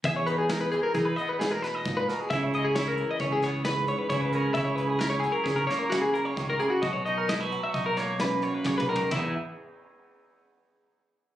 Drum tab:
RD |------------------------------|------------------------------|------------------------------|------------------------------|
HH |x--x--x--x--x--x--x--x--x--x--|x--x--x--x--x--x--x--x--x--x--|x--x--x--x--x--x--x--x--x--x--|x--x--x--x--x--x--x--x--------|
SD |------o-----------o--o-----o--|------o--------o--o-----------|------o--------o--o-----------|------o--------o--o-----o-----|
T2 |------------------------------|------------------------------|------------------------------|--------------------------o---|
FT |------------------------------|------------------------------|------------------------------|----------------------------o-|
BD |o-----------o-----------o-----|o-----------o-----------o-----|o-----------o-----------o-----|o-----------o-----------o-----|

RD |b-----------------------------|
HH |------------------------------|
SD |------------------------------|
T2 |------------------------------|
FT |o-----------------------------|
BD |o-----------------------------|